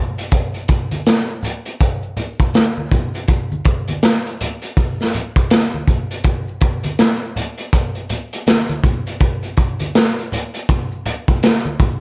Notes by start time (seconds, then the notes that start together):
0.18 closed hi-hat, maracas
0.32 kick, closed hi-hat, high conga, maracas
0.54 closed hi-hat, maracas
0.68 kick, closed hi-hat, maracas
0.91 closed hi-hat, high conga, maracas
1.06 snare, closed hi-hat, maracas
1.29 maracas
1.43 closed hi-hat, low conga, maracas
1.65 closed hi-hat, maracas
1.80 kick, closed hi-hat, maracas
2.03 maracas
2.17 closed hi-hat, low conga, maracas
2.40 kick, closed hi-hat, maracas
2.54 snare, closed hi-hat, high conga, maracas
2.77 high conga, maracas
2.91 kick, closed hi-hat, low conga, maracas
3.14 closed hi-hat, maracas
3.28 kick, closed hi-hat, high conga, maracas
3.52 high conga, maracas
3.65 kick, closed hi-hat, maracas
3.88 closed hi-hat, high conga, maracas
4.03 snare, closed hi-hat, maracas
4.26 closed hi-hat, maracas
4.40 closed hi-hat, low conga, maracas
4.62 closed hi-hat, maracas
4.77 kick, closed hi-hat, maracas
5.00 snare, maracas
5.13 closed hi-hat, low conga, maracas
5.36 kick, closed hi-hat, maracas
5.50 snare, closed hi-hat, high conga, maracas
5.74 high conga, maracas
5.88 kick, closed hi-hat, low conga, maracas
6.11 closed hi-hat, maracas
6.24 kick, closed hi-hat, high conga, maracas
6.48 maracas
6.61 kick, closed hi-hat, maracas
6.83 closed hi-hat, high conga, maracas
6.99 snare, closed hi-hat, maracas
7.22 maracas
7.36 closed hi-hat, low conga, maracas
7.58 closed hi-hat, maracas
7.73 kick, closed hi-hat, maracas
7.95 closed hi-hat, maracas
8.10 closed hi-hat, low conga, maracas
8.33 closed hi-hat, maracas
8.47 snare, closed hi-hat, high conga, maracas
8.69 closed hi-hat, high conga, maracas
8.84 kick, closed hi-hat, low conga, maracas
9.07 closed hi-hat, maracas
9.20 kick, closed hi-hat, high conga, maracas
9.43 closed hi-hat, maracas
9.57 kick, closed hi-hat, maracas
9.80 closed hi-hat, high conga, maracas
9.95 snare, closed hi-hat, maracas
10.18 closed hi-hat, maracas
10.32 closed hi-hat, low conga, maracas
10.54 closed hi-hat, maracas
10.69 kick, closed hi-hat, maracas
10.92 maracas
11.06 closed hi-hat, low conga, maracas
11.28 kick, closed hi-hat, maracas
11.43 snare, closed hi-hat, high conga, maracas
11.66 high conga, maracas
11.80 kick, closed hi-hat, low conga, maracas